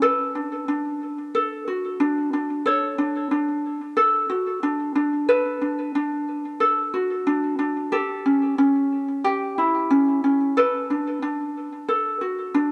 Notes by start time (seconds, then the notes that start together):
0.02 A4 B4
0.35 D4
0.68 D4
1.35 A4
1.68 F#4
2.00 D4
2.33 D4
2.66 A4 C#5
2.98 D4
3.31 D4
3.97 A4
4.30 F#4
4.63 D4
4.95 D4
5.29 A4 B4
5.61 D4
5.95 D4
6.60 A4
6.94 F#4
7.27 D4
7.59 D4
7.92 G4 A4
8.26 C#4
8.58 C#4
9.24 G4
9.58 E4
9.90 C#4
10.24 C#4
10.57 A4 B4
10.90 D4
11.22 D4
11.88 A4
12.21 F#4
12.54 D4